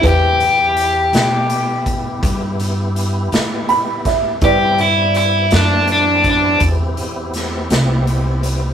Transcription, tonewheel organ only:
\new Staff \with { instrumentName = "Tonewheel organ" } { \time 12/8 \key e \minor \tempo 4. = 55 <gis c' e' g'>8 <b e' g'>1~ <b e' g'>4. | <b c' e' g'>1. | }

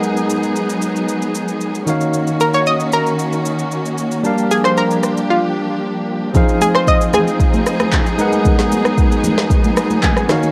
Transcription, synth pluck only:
\new Staff \with { instrumentName = "Synth pluck" } { \time 4/4 \key aes \mixolydian \tempo 4 = 114 r1 | r8 bes'16 des''16 ees''8 bes'2 r8 | r8 aes'16 c''16 bes'4 f'4. r8 | r8 aes'16 c''16 ees''8 aes'2 r8 |
r1 | }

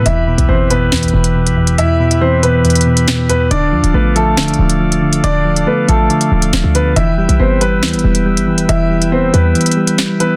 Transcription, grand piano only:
\new Staff \with { instrumentName = "Grand piano" } { \time 4/4 \key e \phrygian \tempo 4 = 139 <e' e''>4 <c' c''>8 <b b'>2~ <b b'>8 | <e' e''>4 <c' c''>8 <b b'>2 <b b'>8 | <d' d''>4 <b b'>8 <a a'>2~ <a a'>8 | <d' d''>4 <b b'>8 <a a'>2 <b b'>8 |
<e' e''>4 <c' c''>8 <b b'>2~ <b b'>8 | <e' e''>4 <c' c''>8 <b b'>2 <b b'>8 | }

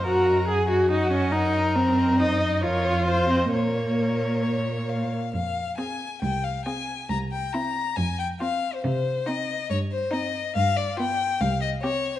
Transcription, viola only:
\new Staff \with { instrumentName = "Viola" } { \time 4/4 \key bes \minor \tempo 4 = 138 ges'4 aes'8 ges'8 ees'8 des'8 ees'4 | c'4 ees'4 f'4. c'8 | bes2.~ bes8 r8 | \key f \minor r4 c'4 r4 c'4 |
r4 c'4 r4 c'4 | r4 c'4 r4 c'4 | r4 b4 r4 c'4 | }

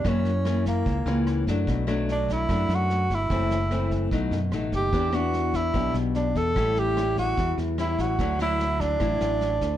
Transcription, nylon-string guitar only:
\new Staff \with { instrumentName = "Nylon-string guitar" } { \time 4/4 \key d \major \tempo 4 = 147 << { <e ais cis'>8 r8 <e ais cis'>4 r8 <e ais cis'>4 <fis a d'>8~ | <fis a d'>8 <fis a d'>4. <fis a d'>4. r8 | <e a c'>8 r8 <e a c'>4 <fis a dis'>8 r8 <fis a dis'>4 | <b d' g'>8 <b d'>4. <b d' g'>4. r8 |
<g cis' e'>4 <g cis' e'>2 <g cis' e'>4 | <fis cis' e'>8 <fis cis' e'>4. <fis e'>4. r8 | } \\ { fis,2 cis2 | b,2 fis,2 | fis,2 b,2 | e2 b,2 |
a,2 e2 | d2 a,2 | } >> }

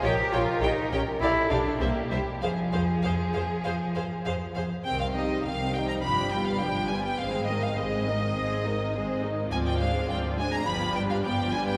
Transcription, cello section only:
\new Staff \with { instrumentName = "Cello section" } { \clef bass \time 4/4 \key f \minor \tempo 4 = 103 g'8 f'8 ees'8 des'8 e'8 d'8 bes8 g8 | f2.~ f8 r8 | \key c \minor c4 c4 g,4 g,4 | aes,4 aes,4 aes,4 aes,4 |
d,4 d,4 g,4 g,4 | }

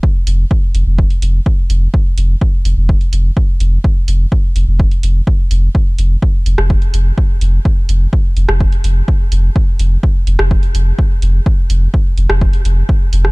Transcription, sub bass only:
\new Staff \with { instrumentName = "Sub bass" } { \clef bass \time 4/4 \key c \phrygian \tempo 4 = 126 r8 f,,16 r8. f,,16 f,,16 r8 f,,16 r8. f,,16 r16 | r8 f,,16 r8. f,,16 f,,16 r8 f,,16 r8. f,,16 r16 | r8 f,,16 r8. f,,16 f,,16 r8 f,,16 r8. f,,16 r16 | r8 f,,16 r8. f,,16 f,,16 r8 f,,16 r8. f,,16 r16 |
r8 f,,16 r8. f,,16 f,,16 r8 f,,16 r8. f,,16 r16 | r8 f,,16 r8. f,,16 f,,16 r8 f,,16 r8. f,,16 r16 | r8 f,,16 r8. f,,16 f,,16 r8 f,,16 r8. f,,16 r16 | }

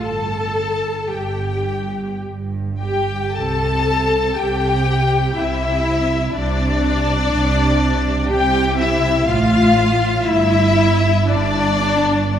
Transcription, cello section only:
\new Staff \with { instrumentName = "Cello section" } { \clef bass \time 3/4 \key c \major \tempo 4 = 60 g,4 g,4 g,4 | c4 c4 c4 | c4 c4 c4 | a,4 g,4 g,4 | }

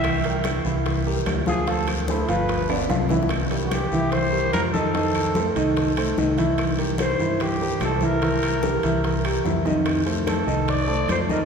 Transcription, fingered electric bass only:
\new Staff \with { instrumentName = "Fingered electric bass" } { \clef bass \time 4/4 \key c \mixolydian \tempo 4 = 147 c,4. c,4. d,4~ | d,4. g,,4. c,4~ | c,4. c,4. f,4~ | f,4. c,4. c,4~ |
c,4. g,4. c,4~ | c,4. c,4. f,4~ | f,4. c,4. f,4 | }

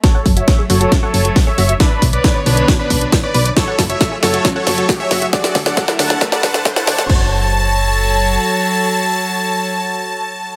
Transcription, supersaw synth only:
\new Staff \with { instrumentName = "Supersaw synth" } { \time 4/4 \key fis \minor \tempo 4 = 136 <a' cis''>8 r16 <cis'' e''>8 r16 <a' cis''>8 r16 <a' cis''>8. r16 <cis'' e''>8 r16 | <d' b'>8 r16 <b' d''>8 r16 <d' b'>8 r16 <d' b'>8. r16 <b' d''>8 r16 | <a' cis''>8 r16 <cis'' e''>8 r16 <a' cis''>8 r16 <a' cis''>8. r16 <cis'' e''>8 r16 | <fis' d''>8 r16 <d'' fis''>8 r16 <fis'' a''>8 r16 <fis'' a''>8. r16 <fis'' a''>8 r16 |
a''1~ | a''1 | }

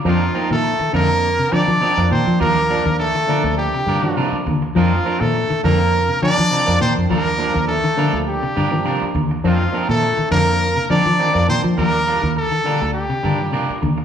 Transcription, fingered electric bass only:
\new Staff \with { instrumentName = "Fingered electric bass" } { \clef bass \time 4/4 \key f \mixolydian \tempo 4 = 102 f,8 r16 bes,8 r16 f,4 f16 f16 r16 f,16 bes,16 f16 | ees,8. ees,8 r8 d,8 r16 g,8. r16 ees,8 | f,8 r16 bes,8 r16 f,4 f16 f16 r16 f,16 bes,16 f,16 | ees,8. ees,8 r8 d,8 r16 g,8. r16 ees,8 |
f,8 r16 bes,8 r16 f,4 f16 f16 r16 f,16 bes,16 f16 | ees,8. ees,8 r8 d,8 r16 g,8. r16 ees,8 | }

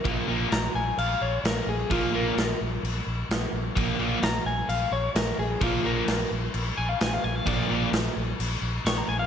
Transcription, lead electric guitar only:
\new Staff \with { instrumentName = "Lead electric guitar" } { \time 4/4 \key c \minor \tempo 4 = 129 r4 bes''8 aes''8 f''8 des''8 bes'8 aes'8 | f'8 bes'4 r2 r8 | r4 bes''8 aes''8 f''8 des''8 bes'8 aes'8 | f'8 bes'4 r4 aes''16 f''16 aes''16 f''16 aes''16 f''16 |
d''4 r2 des'''16 bes''16 aes''16 f''16 | }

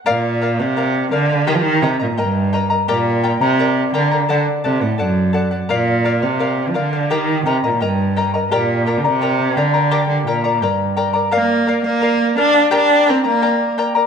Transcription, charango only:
\new Staff \with { instrumentName = "Charango" } { \time 2/4 \key g \minor \tempo 4 = 85 <bes' d'' f''>8 <bes' d'' f''>16 <d'' f''>16 <bes' d'' f''>8 <bes' d'' f''>16 <d'' f''>16 | <g' bes' ees'' g'' bes''>8 <bes' ees'' g'' bes''>16 <bes' ees'' bes''>16 <bes' ees'' g'' bes''>8 <bes' ees'' g'' bes''>16 <bes' ees'' bes''>16 | <g' bes' d'' g'' bes''>8 <bes' d'' g'' bes''>16 <bes' d'' bes''>16 <bes' d'' g'' bes''>8 <bes' d'' g'' bes''>16 <bes' d'' bes''>16 | <a' d'' fis''>8 <a' d'' fis''>16 <d'' fis''>16 <a' d'' fis''>8 <a' d'' fis''>16 <d'' fis''>16 |
<bes' d'' f''>8 <bes' d'' f''>16 <d'' f''>16 <bes' d'' f''>8 <bes' d'' f''>16 <d'' f''>16 | <g' bes' ees'' g'' bes''>8 <bes' ees'' g'' bes''>16 <bes' ees'' bes''>16 <bes' ees'' g'' bes''>8 <bes' ees'' g'' bes''>16 <bes' ees'' bes''>16 | <g' bes' d'' g'' bes''>8 <bes' d'' g'' bes''>16 <bes' d'' bes''>16 <bes' d'' g'' bes''>8 <bes' d'' g'' bes''>16 <bes' d'' bes''>16 | <g' bes' d'' g'' bes''>8 <bes' d'' g'' bes''>16 <bes' d'' bes''>16 <bes' d'' g'' bes''>8 <bes' d'' g'' bes''>16 <bes' d'' bes''>16 |
<bes' d'' f''>8 <bes' d'' f''>16 <d'' f''>16 <bes' d'' f''>8 <bes' d'' f''>16 <d'' f''>16 | <g' bes' d'' g'' bes''>8 <bes' d'' g'' bes''>16 <bes' d'' bes''>16 <bes' d'' g'' bes''>8 <bes' d'' g'' bes''>16 <bes' d'' bes''>16 | }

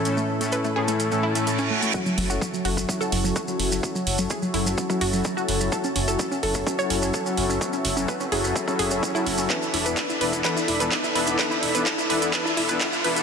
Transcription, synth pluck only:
\new Staff \with { instrumentName = "Synth pluck" } { \time 4/4 \key fis \minor \tempo 4 = 127 r16 a16 r16 a16 b'16 a16 gis'16 a16 r16 a16 e'16 a16 a16 cis'16 a16 a16 | fis'16 fis16 fis16 fis'16 fis16 fis16 fis'16 fis16 fis16 a'16 fis16 fis16 fis'16 fis16 fis16 fis16 | r16 fis16 r16 fis16 gis'16 fis16 e'16 fis16 r16 fis16 fis'16 fis16 fis16 fis'16 fis16 fis16 | a'16 cis'16 cis'16 a'16 cis'16 cis'16 a'16 cis'16 cis'16 cis''16 cis'16 cis'16 a'16 cis'16 cis'16 cis'16 |
r16 cis'16 r16 cis'16 b'16 cis'16 gis'16 cis'16 r16 cis'16 gis'16 cis'16 cis'16 e'16 cis'16 cis'16 | b'16 e'16 e'16 b'16 e'16 e'16 b'16 e'16 b'16 e'16 e'16 b'16 e'16 e'16 b'16 e'16 | b'16 e'16 e'16 b'16 e'16 e'16 b'16 e'16 b'16 e'16 e'16 b'16 e'16 e'16 b'16 e'16 | }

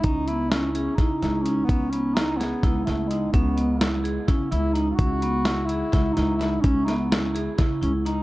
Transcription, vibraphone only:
\new Staff \with { instrumentName = "Vibraphone" } { \time 7/8 \key cis \minor \tempo 4 = 127 cis'8 b8 e'8 gis'8 e'8 e'8 dis'8 | cis'8 b8 e'8 gis'8 e'8 e'8 dis'8 | cis'8 b8 e'8 gis'8 e'8 e'8 dis'8 | cis'8 b8 e'8 gis'8 e'8 e'8 dis'8 |
cis'8 b8 e'8 gis'8 e'8 e'8 dis'8 | }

